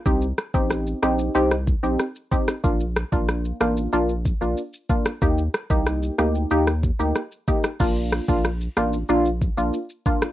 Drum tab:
CC |----------------|----------------|----------------|x---------------|
HH |--x---x---x---x-|--x---x---x---x-|--x---x---x---x-|--x---x---x---x-|
SH |xxxxxxxxxxxxxxxx|xxxxxxxxxxxxxxxx|xxxxxxxxxxxxxxxx|xxxxxxxxxxxxxxxx|
SD |--r-r-r--r--r--r|--r-r-r--------r|--r-r-r--r--r--r|--r-r-r--------r|
BD |o--o------o---o-|o--o------o---o-|o--o------o---o-|o--o------o---o-|